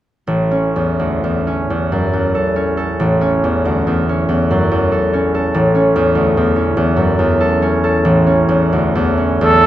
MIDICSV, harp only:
0, 0, Header, 1, 2, 480
1, 0, Start_track
1, 0, Key_signature, 3, "major"
1, 0, Tempo, 946372
1, 143, Time_signature, 6, 3, 24, 8
1, 624, Tempo, 895522
1, 1104, Tempo, 858369
1, 2544, Tempo, 827586
1, 3984, Tempo, 886263
1, 4944, Tempo, 966184
1, 5297, End_track
2, 0, Start_track
2, 0, Title_t, "Harp"
2, 0, Program_c, 0, 46
2, 138, Note_on_c, 0, 33, 35
2, 260, Note_on_c, 0, 61, 29
2, 385, Note_on_c, 0, 40, 26
2, 504, Note_on_c, 0, 38, 24
2, 622, Note_off_c, 0, 40, 0
2, 628, Note_on_c, 0, 40, 27
2, 712, Note_off_c, 0, 38, 0
2, 746, Note_off_c, 0, 61, 0
2, 752, Note_on_c, 0, 61, 25
2, 870, Note_off_c, 0, 40, 0
2, 877, Note_on_c, 0, 40, 30
2, 993, Note_on_c, 0, 42, 26
2, 1102, Note_off_c, 0, 40, 0
2, 1109, Note_on_c, 0, 40, 29
2, 1190, Note_off_c, 0, 42, 0
2, 1227, Note_on_c, 0, 69, 33
2, 1340, Note_off_c, 0, 61, 0
2, 1346, Note_on_c, 0, 61, 32
2, 1459, Note_off_c, 0, 69, 0
2, 1465, Note_on_c, 0, 69, 34
2, 1584, Note_off_c, 0, 33, 0
2, 1591, Note_on_c, 0, 33, 38
2, 1704, Note_off_c, 0, 61, 0
2, 1711, Note_on_c, 0, 61, 30
2, 1831, Note_off_c, 0, 40, 0
2, 1838, Note_on_c, 0, 40, 28
2, 1958, Note_on_c, 0, 38, 26
2, 2072, Note_off_c, 0, 40, 0
2, 2078, Note_on_c, 0, 40, 31
2, 2157, Note_off_c, 0, 38, 0
2, 2197, Note_off_c, 0, 61, 0
2, 2203, Note_on_c, 0, 61, 29
2, 2305, Note_off_c, 0, 40, 0
2, 2312, Note_on_c, 0, 40, 35
2, 2434, Note_on_c, 0, 42, 30
2, 2545, Note_off_c, 0, 40, 0
2, 2552, Note_on_c, 0, 40, 33
2, 2633, Note_off_c, 0, 42, 0
2, 2663, Note_off_c, 0, 69, 0
2, 2670, Note_on_c, 0, 69, 37
2, 2788, Note_off_c, 0, 61, 0
2, 2795, Note_on_c, 0, 61, 32
2, 2911, Note_off_c, 0, 69, 0
2, 2918, Note_on_c, 0, 69, 38
2, 3026, Note_off_c, 0, 33, 0
2, 3033, Note_on_c, 0, 33, 45
2, 3050, Note_off_c, 0, 40, 0
2, 3144, Note_off_c, 0, 61, 0
2, 3151, Note_on_c, 0, 61, 30
2, 3272, Note_on_c, 0, 40, 36
2, 3385, Note_on_c, 0, 38, 29
2, 3506, Note_off_c, 0, 40, 0
2, 3513, Note_on_c, 0, 40, 35
2, 3588, Note_off_c, 0, 38, 0
2, 3616, Note_off_c, 0, 61, 0
2, 3623, Note_on_c, 0, 61, 33
2, 3736, Note_off_c, 0, 40, 0
2, 3743, Note_on_c, 0, 40, 39
2, 3857, Note_on_c, 0, 42, 34
2, 3980, Note_off_c, 0, 40, 0
2, 3987, Note_on_c, 0, 40, 34
2, 4062, Note_off_c, 0, 42, 0
2, 4098, Note_off_c, 0, 69, 0
2, 4104, Note_on_c, 0, 69, 43
2, 4215, Note_off_c, 0, 61, 0
2, 4222, Note_on_c, 0, 61, 41
2, 4332, Note_off_c, 0, 69, 0
2, 4339, Note_on_c, 0, 69, 41
2, 4445, Note_off_c, 0, 33, 0
2, 4452, Note_on_c, 0, 33, 46
2, 4563, Note_off_c, 0, 61, 0
2, 4570, Note_on_c, 0, 61, 36
2, 4682, Note_off_c, 0, 40, 0
2, 4689, Note_on_c, 0, 40, 37
2, 4819, Note_on_c, 0, 38, 34
2, 4936, Note_off_c, 0, 40, 0
2, 4943, Note_on_c, 0, 40, 40
2, 5025, Note_off_c, 0, 38, 0
2, 5047, Note_off_c, 0, 61, 0
2, 5053, Note_on_c, 0, 61, 31
2, 5164, Note_off_c, 0, 40, 0
2, 5170, Note_on_c, 0, 40, 41
2, 5297, Note_off_c, 0, 33, 0
2, 5297, Note_off_c, 0, 40, 0
2, 5297, Note_off_c, 0, 61, 0
2, 5297, Note_off_c, 0, 69, 0
2, 5297, End_track
0, 0, End_of_file